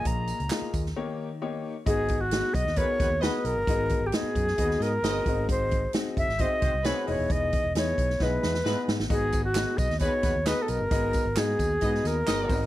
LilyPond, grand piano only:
<<
  \new Staff \with { instrumentName = "Grand piano" } { \time 4/4 \key ees \mixolydian \tempo 4 = 133 << { r2. des'''4 | \key gis \minor r1 | r1 | r1 |
r1 | r1 | r1 | } \\ { <bes f' aes' ees''>8 r8 <bes f' aes' ees''>8 r8 <bes ees' g' des''>8 r8 <bes ees' g' des''>8 r8 | <b dis' fis' gis' dis''>8 r8 <b dis' fis' gis' dis''>8 r8 <b dis' fis' gis' ais'>8 r8 <b dis' fis' gis' fis''>8 r8 | <b dis' fis' gis' dis''>8 r8 <b dis' fis' gis' dis''>8 r8 <b dis' fis' gis' dis''>8 r8 <b dis' fis' gis' dis''>8 <bis dis' fis' gis' dis''>8~ | <bis dis' fis' gis' dis''>8 r8 <bis dis' fis' gis' dis''>8 r8 <bis dis' fis' gis' dis''>8 r8 <bis dis' fis' gis' dis''>8 <b dis' e' gis' dis''>8~ |
<b dis' e' gis' dis''>8 r8 <b dis' e' gis' dis''>8 r8 <b dis' e' gis' dis''>8 r8 <b dis' e' gis' dis''>8 r8 | <b dis' fis' gis' dis''>8 r8 <b dis' fis' gis' dis''>8 r8 <b dis' fis' gis' dis''>8 r8 <b dis' fis' gis' dis''>8 r8 | <b dis' fis' gis' dis''>8 r8 <b dis' fis' gis' dis''>8 r8 <b dis' fis' gis' dis''>8 r8 <b dis' fis' gis' dis''>8 <bis dis' fis' gis' d'' dis''>8 | } >> }
  \new Staff \with { instrumentName = "Grand piano" } { \clef bass \time 4/4 \key ees \mixolydian bes,4 r4 ees4. r8 | \key gis \minor gis,4. r2 r8 | gis,4. r2 gis,8~ | gis,4 r2 r8 e8~ |
e4 r2. | gis,4. r2 r8 | gis,4. r2 gis,8 | }
>>